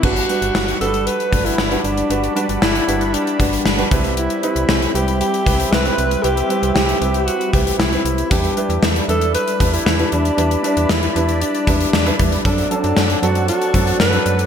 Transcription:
Already playing: D3 B3 G4
0.03 G1 G3 D4 F#4 B4 D5 F#5 B5, kick, crash
0.16 closed hi-hat
0.29 G3 D4 F#4 B4, closed hi-hat
0.42 G1, closed hi-hat
0.55 G1, snare
0.68 closed hi-hat
0.80 G1 G3 D4 F#4 A4 B4, closed hi-hat
0.94 closed hi-hat
1.07 B4, closed hi-hat
1.20 closed hi-hat
1.31 G1 G3 D4 F#4 B4, kick, closed hi-hat
1.46 E4, closed hi-hat
1.58 G1, snare
1.70 G3 D4 F#4 B4, closed hi-hat
1.84 G1 D4, closed hi-hat
1.97 closed hi-hat
2.09 G1 G3 D4 F#4 B4, closed hi-hat
2.24 closed hi-hat
2.35 G3 D4 F#4 B4, closed hi-hat
2.49 G1, closed hi-hat
2.62 G1 E4, snare
2.75 closed hi-hat
2.87 G1 G3 D4 F#4 B4, closed hi-hat
3.01 closed hi-hat
3.14 D4, closed hi-hat
3.27 closed hi-hat
3.38 G1 G3 D4 F#4 B4, kick, closed hi-hat
3.53 closed hi-hat
3.66 G1, snare
3.77 G3 D4 F#4 B4, closed hi-hat
3.91 C2 G3 C4 E4 B4 E5, kick, closed hi-hat
4.04 closed hi-hat
4.17 E4, closed hi-hat
4.30 closed hi-hat
4.42 G3 C4 E4 B4, closed hi-hat
4.56 C2, closed hi-hat
4.69 C2, snare
4.82 closed hi-hat
4.94 C2 G3 C4 E4 G4 B4, closed hi-hat
5.08 closed hi-hat
5.21 G4, closed hi-hat
5.34 closed hi-hat
5.45 C2 G3 C4 E4 B4, kick, closed hi-hat
5.60 closed hi-hat
5.72 C2 B4, snare
5.84 G3 C4 E4 B4, closed hi-hat
5.98 C2, closed hi-hat
6.11 closed hi-hat
6.23 C2 G3 C4 E4 G4 B4, closed hi-hat
6.37 closed hi-hat
6.49 G3 C4 E4 B4, closed hi-hat
6.63 C2, closed hi-hat
6.74 C2 G4, snare
6.89 closed hi-hat
7.01 C2 G3 C4 E4 B4, closed hi-hat
7.14 closed hi-hat
7.26 F#4, closed hi-hat
7.41 closed hi-hat
7.53 C2 G3 C4 E4 G4 B4, kick, closed hi-hat
7.67 closed hi-hat
7.79 C2 E4, snare
7.92 G3 C4 E4 B4, closed hi-hat
8.05 C2, closed hi-hat
8.18 closed hi-hat
8.30 E2 G3 D4 E4 G4 B4 D5 B5, kick, closed hi-hat
8.44 closed hi-hat
8.56 G3 D4 E4 B4, closed hi-hat
8.69 E2, closed hi-hat
8.83 E2, snare
8.96 closed hi-hat
9.08 E2 G3 D4 E4 A4 B4, closed hi-hat
9.21 closed hi-hat
9.35 B4, closed hi-hat
9.48 closed hi-hat
9.60 E2 G3 D4 E4 B4, kick, closed hi-hat
9.74 E4, closed hi-hat
9.86 E2, snare
9.98 G3 D4 E4 B4, closed hi-hat
10.12 E2 D4, closed hi-hat
10.25 closed hi-hat
10.37 E2 G3 D4 E4 B4, closed hi-hat
10.51 closed hi-hat
10.63 G3 D4 E4 B4, closed hi-hat
10.77 E2, closed hi-hat
10.89 E2 E4, snare
11.03 closed hi-hat
11.15 E2 G3 D4 E4 B4, closed hi-hat
11.29 closed hi-hat
11.42 D4, closed hi-hat
11.55 closed hi-hat
11.67 E2 G3 D4 E4 B4, kick, closed hi-hat
11.80 closed hi-hat
11.93 E2, snare
12.06 G3 D4 E4 B4, closed hi-hat
12.19 E2, kick, closed hi-hat
12.32 closed hi-hat
12.44 F#2 F#3 C4 D4 A4 F#5 A5, kick, closed hi-hat
12.58 closed hi-hat
12.70 F#3 C4 D4 A4, closed hi-hat
12.84 F#2, closed hi-hat
12.97 F#2, snare
13.10 closed hi-hat
13.22 F#2 F#3 C4 D4 F#4 A4, closed hi-hat
13.35 closed hi-hat
13.48 F#4, closed hi-hat
13.62 closed hi-hat
13.74 F#2 F#3 C4 D4 A4, kick, closed hi-hat
13.87 closed hi-hat
14.00 F#2 B4, snare
14.12 F#3 C4 D4 A4, closed hi-hat
14.26 F#2, closed hi-hat
14.39 closed hi-hat

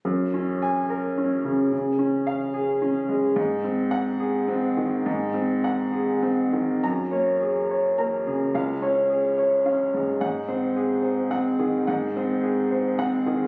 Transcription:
0.05 F#2
0.34 C#4
0.62 G#5
0.90 A#4
1.18 C#4
1.44 C#3
1.72 C#3
1.99 C#4
2.27 F5
2.54 G#4
2.82 C#4
3.09 G#3
3.36 G#2
3.64 C4
3.91 F#5
4.20 G#4
4.48 C4
4.77 D#3
5.06 G#2
5.34 C4
5.64 F#5
5.93 G#4
6.23 C4
6.53 D#3
6.83 F#2 A#5
7.11 A#3 C#5
7.41 G#4
7.70 C#5
7.98 A#3 A#5
8.26 C#3 G#4
8.55 C#2 F5
8.82 C#4 C#5
9.10 G#4
9.38 C#5
9.65 C#4 F5
9.94 G#2 G#4
10.21 G#2 F#5
10.48 C4 C5
10.76 G#4
11.03 C5
11.31 C4 F#5
11.59 D#3 G#4
11.87 G#2 F#5
12.16 C4 C5
12.43 G#4
12.71 C5
12.99 C4 F#5
13.26 D#3 G#4

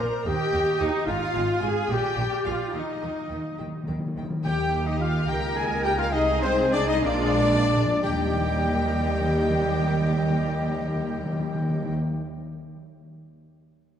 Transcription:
Already playing: A#2 D5 A#5
0.00 A#4
0.25 D#2 G4 D#5 G5
0.53 D#2 G5
0.79 D#2 D#4 D#5 G5
1.06 G#1 G#2 F4 F5 G#5
1.34 G#1 G#2 G#5
1.62 G#1 G#2 G#4 G#5
1.89 A#1 A#2 G4 D5 G5 G#5
2.17 A#1 A#2 G#5
2.44 A#1 A#2 F4 F5 G#5
2.73 D#2 D#3 D#4 D#5 G5
2.82 D#3
2.89 D#3
2.97 D#3
3.01 D#2 D#3 G5
3.19 D#3
3.27 D#2 D#3 G5
3.36 D#3
3.44 D#3
3.51 D#3
3.58 D#2 D#3 G5
3.68 D#3
3.76 D#3
3.83 D#3 G5
3.87 D#2 D#3
3.99 D#3
4.06 D#3
4.15 D#2 D#3 G5
4.23 D#3
4.30 D#3
4.44 D#2 D#3 A#3 D#4 G4 G5
4.86 D#4 D#5
5.00 F4 F5
5.27 C#2 A#3 D#4 G4 A#4 G5
5.55 G#4 G#5
5.83 G4 G5
5.97 F4 F5
6.11 C2 G#3 D#4 G#4 D#5
6.41 C4 C5
6.45 C4
6.71 D4 D5
6.76 D4
6.87 D#4 D#5
7.03 A#1 G#3 A#3 D4 F4 D5
7.13 A#2
7.22 A#2
7.31 A#2
7.40 A#2
7.49 A#2
7.58 A#2
7.68 A#2
7.77 A#2
7.86 A#2
8.02 D#2 D#3 G3 A#3 G4 D#5 G5
8.10 D#3
8.17 D#3
8.25 D#3
8.32 D#3
8.40 D#3
8.47 D#3
8.55 D#3
8.63 D#3
8.70 D#3
8.77 D#3
8.85 D#3
8.91 D#3
8.99 D#3
9.06 D#3
9.13 D#3
9.21 D#3
9.28 D#3
9.36 D#3
9.43 D#3
9.50 D#3
9.57 D#3
9.65 D#3
9.72 D#3
9.79 D#3
9.87 D#3
9.94 D#3
10.01 D#3
10.08 D#3
10.15 D#3
10.23 D#3
10.30 D#3
10.38 D#3
10.44 D#3
10.51 D#3
10.59 D#3
10.66 D#3
10.74 D#3
10.81 D#3
10.88 D#3
10.96 D#3
11.04 D#3
11.11 D#3
11.18 D#3
11.26 D#3
11.32 D#3
11.40 D#3
11.46 D#3
11.55 D#3
11.62 D#3
11.70 D#3
11.77 D#3
11.84 D#3

